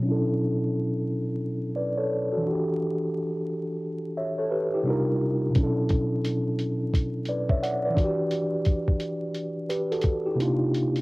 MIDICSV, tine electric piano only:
0, 0, Header, 1, 2, 480
1, 0, Start_track
1, 0, Key_signature, 2, "minor"
1, 0, Tempo, 689655
1, 28, Time_signature, 4, 2, 24, 8
1, 7667, End_track
2, 0, Start_track
2, 0, Title_t, "Tine electric piano"
2, 0, Program_c, 0, 4
2, 0, Note_on_c, 0, 47, 64
2, 2, Note_on_c, 0, 54, 59
2, 19, Note_on_c, 0, 61, 58
2, 39, Note_on_c, 0, 62, 60
2, 60, Note_on_c, 0, 64, 60
2, 80, Note_on_c, 0, 69, 67
2, 178, Control_c, 0, 64, 127
2, 1224, Note_on_c, 0, 74, 56
2, 1227, Note_on_c, 0, 71, 48
2, 1230, Note_off_c, 0, 69, 0
2, 1369, Note_off_c, 0, 74, 0
2, 1371, Note_off_c, 0, 71, 0
2, 1375, Note_on_c, 0, 73, 69
2, 1380, Note_on_c, 0, 69, 55
2, 1605, Note_off_c, 0, 73, 0
2, 1608, Note_off_c, 0, 69, 0
2, 1615, Note_on_c, 0, 69, 57
2, 1619, Note_on_c, 0, 66, 48
2, 1652, Note_on_c, 0, 52, 68
2, 1656, Note_off_c, 0, 47, 0
2, 1667, Note_off_c, 0, 54, 0
2, 1675, Note_off_c, 0, 61, 0
2, 1677, Note_off_c, 0, 62, 0
2, 1685, Note_on_c, 0, 62, 59
2, 1696, Note_off_c, 0, 64, 0
2, 1709, Note_off_c, 0, 66, 0
2, 1716, Control_c, 0, 64, 0
2, 1717, Note_on_c, 0, 66, 57
2, 1751, Note_on_c, 0, 67, 73
2, 1830, Control_c, 0, 64, 127
2, 1845, Note_off_c, 0, 69, 0
2, 2888, Note_off_c, 0, 66, 0
2, 2905, Note_on_c, 0, 76, 59
2, 2906, Note_off_c, 0, 67, 0
2, 2908, Note_on_c, 0, 73, 50
2, 3043, Note_off_c, 0, 73, 0
2, 3049, Note_off_c, 0, 76, 0
2, 3052, Note_on_c, 0, 73, 65
2, 3056, Note_on_c, 0, 69, 58
2, 3138, Note_on_c, 0, 71, 68
2, 3140, Note_off_c, 0, 73, 0
2, 3142, Note_off_c, 0, 69, 0
2, 3143, Note_on_c, 0, 67, 55
2, 3286, Note_off_c, 0, 71, 0
2, 3288, Note_off_c, 0, 67, 0
2, 3297, Note_on_c, 0, 67, 62
2, 3303, Note_on_c, 0, 64, 48
2, 3332, Note_off_c, 0, 52, 0
2, 3349, Note_off_c, 0, 62, 0
2, 3362, Note_on_c, 0, 48, 67
2, 3369, Note_on_c, 0, 55, 62
2, 3380, Note_on_c, 0, 62, 57
2, 3388, Note_on_c, 0, 63, 60
2, 3396, Control_c, 0, 64, 0
2, 3399, Note_on_c, 0, 65, 62
2, 3411, Note_on_c, 0, 70, 77
2, 3526, Note_off_c, 0, 67, 0
2, 3529, Note_off_c, 0, 64, 0
2, 3532, Control_c, 0, 64, 127
2, 3824, Note_on_c, 0, 47, 72
2, 3841, Note_on_c, 0, 54, 60
2, 3855, Note_off_c, 0, 48, 0
2, 3858, Note_off_c, 0, 55, 0
2, 3862, Note_on_c, 0, 61, 63
2, 3864, Note_off_c, 0, 62, 0
2, 3868, Note_off_c, 0, 63, 0
2, 3874, Note_off_c, 0, 65, 0
2, 3877, Control_c, 0, 64, 0
2, 3879, Note_off_c, 0, 70, 0
2, 3883, Note_on_c, 0, 62, 63
2, 3902, Note_on_c, 0, 64, 62
2, 3919, Note_on_c, 0, 69, 72
2, 3979, Control_c, 0, 64, 127
2, 5071, Note_on_c, 0, 74, 54
2, 5076, Note_on_c, 0, 71, 48
2, 5213, Note_off_c, 0, 74, 0
2, 5215, Note_off_c, 0, 71, 0
2, 5219, Note_on_c, 0, 76, 64
2, 5225, Note_on_c, 0, 73, 58
2, 5303, Note_off_c, 0, 76, 0
2, 5306, Note_off_c, 0, 73, 0
2, 5310, Note_on_c, 0, 78, 65
2, 5311, Note_on_c, 0, 74, 54
2, 5452, Note_off_c, 0, 78, 0
2, 5453, Note_off_c, 0, 74, 0
2, 5463, Note_on_c, 0, 74, 55
2, 5468, Note_on_c, 0, 71, 47
2, 5498, Note_off_c, 0, 47, 0
2, 5499, Note_on_c, 0, 52, 68
2, 5507, Note_off_c, 0, 54, 0
2, 5517, Note_off_c, 0, 61, 0
2, 5523, Note_off_c, 0, 62, 0
2, 5532, Note_on_c, 0, 62, 62
2, 5537, Note_off_c, 0, 64, 0
2, 5546, Note_off_c, 0, 69, 0
2, 5557, Control_c, 0, 64, 0
2, 5563, Note_on_c, 0, 66, 59
2, 5596, Note_on_c, 0, 67, 76
2, 5667, Control_c, 0, 64, 127
2, 5689, Note_off_c, 0, 74, 0
2, 5692, Note_off_c, 0, 71, 0
2, 6731, Note_off_c, 0, 66, 0
2, 6744, Note_off_c, 0, 67, 0
2, 6748, Note_on_c, 0, 71, 58
2, 6753, Note_on_c, 0, 67, 54
2, 6891, Note_off_c, 0, 71, 0
2, 6894, Note_off_c, 0, 67, 0
2, 6901, Note_on_c, 0, 69, 65
2, 6906, Note_on_c, 0, 66, 55
2, 7128, Note_off_c, 0, 69, 0
2, 7131, Note_off_c, 0, 66, 0
2, 7141, Note_on_c, 0, 67, 62
2, 7144, Note_on_c, 0, 64, 49
2, 7176, Note_off_c, 0, 52, 0
2, 7192, Note_off_c, 0, 62, 0
2, 7204, Note_on_c, 0, 48, 69
2, 7216, Note_on_c, 0, 58, 58
2, 7230, Note_on_c, 0, 62, 61
2, 7235, Control_c, 0, 64, 0
2, 7241, Note_on_c, 0, 63, 63
2, 7253, Note_on_c, 0, 65, 76
2, 7347, Control_c, 0, 64, 127
2, 7368, Note_off_c, 0, 67, 0
2, 7370, Note_off_c, 0, 64, 0
2, 7667, Note_off_c, 0, 48, 0
2, 7667, Note_off_c, 0, 58, 0
2, 7667, Note_off_c, 0, 62, 0
2, 7667, Note_off_c, 0, 63, 0
2, 7667, Note_off_c, 0, 65, 0
2, 7667, End_track
0, 0, End_of_file